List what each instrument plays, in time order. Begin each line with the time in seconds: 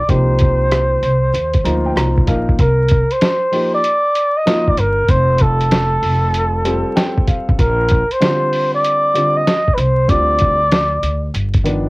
Already playing: flugelhorn D5
0.08 upright bass C2, grand piano F3 A#3 D#4 G4, flugelhorn C5, kick, closed hi-hat
0.39 kick, closed hi-hat
0.71 cross-stick, closed hi-hat
1.02 upright bass C2, closed hi-hat
1.33 upright bass D#2, closed hi-hat
1.53 kick, closed hi-hat
1.64 upright bass D2, grand piano F3 A#3 D#4 F4 A#5, closed hi-hat
1.86 grand piano G5
1.96 upright bass C2, grand piano A#5, cross-stick, closed hi-hat
2.18 kick
2.27 upright bass A#1, grand piano F3 A#3 D#4 A#4 F5, kick, closed hi-hat
2.49 kick
2.59 upright bass C2, flugelhorn A#4, kick, closed hi-hat
2.88 kick, closed hi-hat
3.11 flugelhorn C5, closed hi-hat
3.21 snare, closed hi-hat
3.52 grand piano F3 A#3 D#4 G4, open hi-hat
3.74 flugelhorn D5
3.84 closed hi-hat
4.15 closed hi-hat
4.37 flugelhorn D#5
4.46 grand piano F3 A#3 D#4 F4, snare, closed hi-hat
4.68 flugelhorn D5, kick
4.77 upright bass G1, flugelhorn A#4, closed hi-hat
5.09 upright bass F1, flugelhorn C5, kick, closed hi-hat
5.38 flugelhorn A4, kick, closed hi-hat
5.61 closed hi-hat
5.71 snare, closed hi-hat
6.02 upright bass F1, open hi-hat
6.34 closed hi-hat
6.64 grand piano G3 C4 F4 A4, closed hi-hat
6.96 grand piano G5, snare, closed hi-hat
7.18 kick
7.27 grand piano F5, kick, closed hi-hat
7.49 upright bass A1, kick
7.59 upright bass A#1, flugelhorn A#4, kick, closed hi-hat
7.88 kick, closed hi-hat
8.11 flugelhorn C5, closed hi-hat
8.20 grand piano D3 G3 C4 F4, snare, closed hi-hat
8.53 open hi-hat
8.74 flugelhorn D5
8.84 closed hi-hat
9.14 grand piano D3 G3 C4 F4, closed hi-hat
9.37 flugelhorn D#5
9.47 snare, closed hi-hat
9.68 kick
9.74 upright bass C2, flugelhorn B4, closed hi-hat
9.79 flugelhorn C5
10.08 upright bass D2, grand piano D3 G3 C4 F4, flugelhorn D5, kick, closed hi-hat
10.39 kick, closed hi-hat
10.71 snare, closed hi-hat
11.03 upright bass D2, closed hi-hat
11.34 upright bass G1, closed hi-hat
11.54 kick, closed hi-hat
11.64 grand piano D#3 F3 B3 D4, closed hi-hat